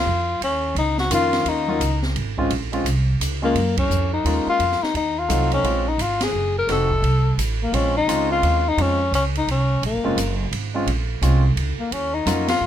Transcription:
Already playing: F4
0.06 F2
0.41 D#2 C#4, ride
0.75 C#2 D#4, ride
0.98 F#4, snare
1.10 F2 D#3 A#3 C#4 F4, hi-hat pedal, ride
1.14 F4
1.33 snare, ride
1.45 D#2 D#4, ride
1.67 F#3 A#3 C#4 F4
1.80 C#2, hi-hat pedal, ride
2.02 snare
2.15 G#1, ride
2.38 G#3 C4 C#4 F4, kick
2.50 A#1, ride
2.72 G#3 C4 C#4 F4, ride
2.85 C2, hi-hat pedal, ride
3.20 C#2, hi-hat pedal, ride
3.42 G#3 A#3 C#4 F4
3.54 F#2, ride
3.77 C#4, kick, ride
3.90 F2, hi-hat pedal
4.13 D#4
4.24 D#2 G#3 A#3 C#4 F4, ride
4.46 F4, muted upright bass stroke
4.59 F2, ride
4.72 snare
4.81 D#4, muted upright bass stroke, snare
4.94 D#2 D#4, ride
5.19 F4
5.28 C2 F#3 A3 C4 D#4, hi-hat pedal, ride
5.52 C#4, ride
5.63 A#1 G#3 C4 C#4 F4, ride
5.88 D#4
5.98 G#1 F4, hi-hat pedal, ride
6.20 G#4, snare, ride
6.33 F#1
6.58 A#4
6.67 F1 A3 C4 D#4 F#4, snare, ride
6.72 A4
6.91 kick
7.02 C2, ride
7.37 A1, hi-hat pedal, ride
7.63 A#3
7.72 A#1 G#3 C4 C#4 F4, ride
7.97 D#4
8.07 C#2 G#3 C4 C#4 F4, hi-hat pedal, ride
8.32 F4
8.42 D#2, ride
8.68 D#4
8.77 F2 G#3 C4 C#4 F4, ride
8.81 C#4
9.11 C#2 C#4, hi-hat pedal, ride
9.35 D#4, ride
9.47 C2, ride
9.51 C#4
9.82 A#1, ride
9.86 A#3
9.93 G#1
10.04 F1 G#3 C4 C#4 F4
10.16 F#1, hi-hat pedal, ride
10.51 G#1, ride
10.74 G#3 C4 C#4 F4
10.86 A#1, ride
11.21 C2 G#3 C4 C#4 F4, hi-hat pedal, ride
11.56 C#2, ride
11.78 A#3, muted upright bass stroke
11.91 D#2 C#4, ride
12.14 D#4
12.26 F2 F#3 A#3 C#4 F4, snare, hi-hat pedal, ride
12.48 F4, snare, ride
12.61 F#2

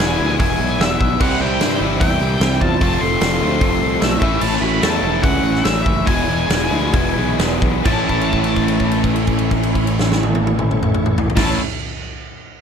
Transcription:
Already playing: E2 B2 E3 G#3 B3 E4 B4 G#5
0.00 E1, snare
0.19 D2 E2 B2 E3 G#3 B3 E4
0.40 E1 E4 G#5, kick, open hi-hat
0.60 B1
0.80 E1 B3 E5, snare, open hi-hat
1.01 B1, kick
1.20 C2 C3 E3 G3 C4 E4 C5 F#5, kick, crash
1.40 C2 C3 G3 C4 E4 G5
1.60 G2 C3 G3 C4, snare, open hi-hat
1.81 G1 C3 E3 G3 C4 E4
2.01 E2 C3 G3 C4 E4 G5, kick, open hi-hat
2.20 C2 C3 G3 C4
2.40 C2 C3 G3 C4, snare, open hi-hat
2.52 snare
2.61 E2 C3 G3 C4 F4 A5, kick
2.80 F1 F2 C3 F3 A3 C4 F4 C5, kick, open hi-hat
2.84 A3
3.01 F1 F2 C3 F3 A4 C6
3.21 F1 F2 C3 F3 A4 C6, snare, open hi-hat
3.40 D2 F2 C3 F3 A3 C4 F4
3.61 F1 F2 C3 F3, kick, open hi-hat
3.82 C2 F2 C3 F3
4.01 B1 F2 C3 F3 A3 E5, snare, open hi-hat
4.21 A1 A2 E3 A3 C#4 E4 C#5, kick
4.41 A1 A2 E3 A3 E4 A5, crash
4.61 A1 A2 E3 A3 F#4 B5
4.81 E2 A2 E3 A3 C#4 E4 A5, snare, open hi-hat
5.02 E1 A2 E3 A3
5.23 C#2 A2 E3 A3 C#4 F#5, kick, open hi-hat
5.43 A1 A2 E3 A3
5.55 snare
5.64 A1 A2 E3 A3 E5, snare, open hi-hat
5.86 F#1 A2 E3 A3, kick
6.05 E1 E2 B2 E3 G#3 B3 E4 B4 G#5, kick, open hi-hat
6.28 E1 E2 B2 E3
6.50 E1 E2 B2 E3, snare, open hi-hat
6.70 D2 E2 B2 E3 G#3 B3 E4
6.93 E1 E2 B2 E3, kick, open hi-hat
7.16 B1 E2 B2 E3
7.39 E1 E2 B2 E3, snare, open hi-hat
7.62 B1 E2 B2 E3, kick
7.83 A1 A2 E3 A3 C#4 E4 C#5 A5, kick, crash
7.88 E3 A3
8.09 kick, crash
8.21 crash
8.33 kick, crash
8.44 crash
8.56 kick, crash
8.68 crash
8.80 kick, crash
8.92 crash
9.04 kick, crash
9.16 crash
9.27 kick, crash
9.39 crash
9.51 kick, crash
9.63 crash
9.75 kick, crash
9.87 crash
9.99 snare
10.12 snare
10.23 high tom
10.35 high tom
10.47 high tom
10.59 mid tom
10.71 mid tom
10.83 mid tom
10.95 mid tom
11.06 mid tom
11.18 floor tom
11.30 floor tom
11.35 A1 A2 E3 A3 C#4 E4 C#5 A5, kick, snare, crash
11.40 A3 E4

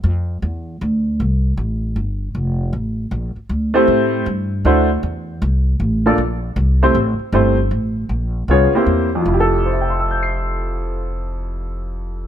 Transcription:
0.04 F2
0.42 E2
0.81 D2
1.20 C2
1.57 A1
1.96 G1
2.35 F1
2.73 A1
3.11 A#1
3.36 muted upright bass stroke
3.49 D2
3.74 A3 C4 E4 G4 C5
3.88 A2
4.26 G2
4.65 D2 A3 D4 E4 F#4 C5
5.03 E2
5.42 C2
5.80 A1
6.06 A#3 D4 F4 A4 D5
6.18 A#1
6.56 C2
6.83 A3 C4 E4 G4 C5
6.95 A1
7.19 muted upright bass stroke
7.32 G1 A3 C4 E4 G4 C5
7.71 A1
8.09 A#1
8.48 C2 B3 C#4 F4 G#4 C#5
8.73 A#3 C4 E4 G4 C5, muted upright bass stroke
8.86 E2
9.15 F2
9.21 F3
9.26 F1 E4
9.34 G4
9.40 A4
9.66 C5
9.73 E5
9.81 G5
9.90 C6
10.00 E6
10.11 G6
10.23 C7

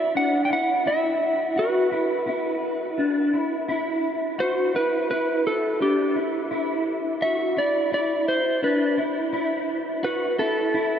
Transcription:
Already playing: E4 E5
0.15 D4 F#5
0.45 G5
0.50 E4 F#5
0.86 E4 E5
1.56 F#4 B4
1.91 E4
2.27 E4
2.98 D4
3.33 E4
3.68 E4
4.38 F#4 C5
4.74 E4 B4
5.10 E4 B4
5.47 A4
5.80 D4 G4
6.15 E4
6.51 E4
7.21 F#4 E5
7.57 E4 D5
7.92 E4 D5
8.28 C5
8.62 D4 B4
8.97 E4
9.33 E4
10.03 F#4 B4
10.39 E4 A4
10.74 E4

